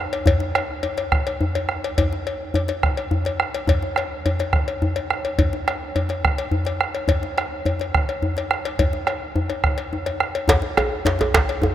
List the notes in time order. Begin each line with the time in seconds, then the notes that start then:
0.13 cowbell
0.26 bombo low, cowbell, djembe slap, djembe tone, djembe bass
0.40 djembe slap
0.55 bombo rim, cowbell
0.83 cowbell, djembe slap, djembe tone
0.97 cowbell, djembe slap
1.12 bombo rim, bombo low, djembe slap
1.27 cowbell
1.41 djembe tone, djembe bass
1.55 cowbell, djembe slap
1.69 bombo rim
1.84 cowbell
1.98 bombo low, cowbell, djembe tone, djembe bass
2.13 djembe slap
2.27 cowbell
2.54 cowbell, djembe slap, djembe tone, djembe bass
2.68 cowbell, djembe slap
2.83 bombo rim, bombo low, djembe slap
2.97 cowbell
3.11 djembe slap, djembe tone, djembe bass
3.25 cowbell, djembe slap
3.40 bombo rim
3.54 cowbell
3.67 bombo low, cowbell, djembe slap, djembe tone, djembe bass
3.82 djembe slap
3.96 bombo rim, cowbell
4.26 cowbell, djembe slap, djembe tone, djembe bass
4.39 cowbell, djembe slap
4.53 bombo rim, bombo low, djembe slap
4.68 cowbell
4.82 djembe tone, djembe bass
4.96 cowbell, djembe slap
5.10 bombo rim
5.25 cowbell
5.39 bombo low, cowbell, djembe slap, djembe tone, djembe bass
5.53 djembe slap
5.68 bombo rim, cowbell
5.96 cowbell, djembe slap, djembe tone, djembe bass
6.09 cowbell, djembe slap
6.23 bombo rim, bombo low, djembe slap
6.38 cowbell
6.51 djembe tone, djembe bass
6.65 cowbell, djembe slap
6.81 bombo rim
6.95 cowbell
7.08 bombo low, cowbell, djembe slap, djembe tone, djembe bass
7.23 djembe slap
7.38 bombo rim, cowbell
7.66 cowbell, djembe slap, djembe tone, djembe bass
7.79 cowbell, djembe slap
7.94 bombo rim, bombo low, djembe slap
8.09 cowbell
8.22 djembe tone, djembe bass
8.37 cowbell, djembe slap
8.51 bombo rim
8.65 cowbell
8.79 bombo low, cowbell, djembe tone, djembe bass
8.93 djembe slap
9.07 bombo rim, cowbell
9.36 djembe tone, djembe bass
9.50 cowbell, djembe slap
9.64 bombo rim, bombo low
9.78 cowbell, djembe slap
9.93 djembe tone
10.06 bombo rim, cowbell, djembe slap
10.20 bombo rim, djembe slap
10.35 bombo rim, cowbell
10.48 bombo low, cowbell, djembe slap, djembe tone, djembe bass
10.62 djembe slap
10.77 bombo rim, cowbell, djembe tone
11.05 cowbell, djembe slap, djembe tone, djembe bass
11.19 cowbell, djembe slap, djembe tone
11.33 bombo rim, bombo low, djembe slap
11.49 cowbell
11.62 djembe tone, djembe bass
11.63 djembe tone